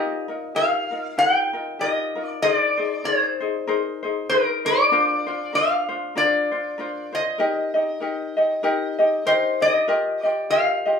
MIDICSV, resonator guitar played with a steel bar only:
0, 0, Header, 1, 2, 480
1, 0, Start_track
1, 0, Key_signature, -3, "major"
1, 0, Tempo, 621762
1, 1871, Time_signature, 4, 2, 24, 8
1, 8489, End_track
2, 0, Start_track
2, 0, Title_t, "Resonator guitar played with a steel bar"
2, 0, Program_c, 0, 25
2, 0, Note_on_c, 0, 75, 88
2, 432, Note_on_c, 0, 77, 88
2, 449, Note_off_c, 0, 75, 0
2, 912, Note_off_c, 0, 77, 0
2, 915, Note_on_c, 0, 79, 101
2, 1396, Note_on_c, 0, 75, 83
2, 1408, Note_off_c, 0, 79, 0
2, 1751, Note_off_c, 0, 75, 0
2, 1751, Note_on_c, 0, 74, 83
2, 1869, Note_off_c, 0, 74, 0
2, 1872, Note_on_c, 0, 75, 96
2, 1957, Note_off_c, 0, 75, 0
2, 1957, Note_on_c, 0, 74, 96
2, 2357, Note_on_c, 0, 72, 84
2, 2366, Note_off_c, 0, 74, 0
2, 3284, Note_off_c, 0, 72, 0
2, 3316, Note_on_c, 0, 70, 80
2, 3597, Note_off_c, 0, 70, 0
2, 3597, Note_on_c, 0, 74, 90
2, 4285, Note_on_c, 0, 77, 85
2, 4297, Note_off_c, 0, 74, 0
2, 4728, Note_off_c, 0, 77, 0
2, 4767, Note_on_c, 0, 74, 84
2, 5515, Note_off_c, 0, 74, 0
2, 5518, Note_on_c, 0, 75, 78
2, 7154, Note_on_c, 0, 72, 77
2, 7399, Note_off_c, 0, 75, 0
2, 7428, Note_on_c, 0, 75, 92
2, 7434, Note_off_c, 0, 72, 0
2, 7907, Note_off_c, 0, 75, 0
2, 7907, Note_on_c, 0, 74, 92
2, 8107, Note_off_c, 0, 74, 0
2, 8110, Note_on_c, 0, 77, 86
2, 8489, Note_off_c, 0, 77, 0
2, 8489, End_track
0, 0, End_of_file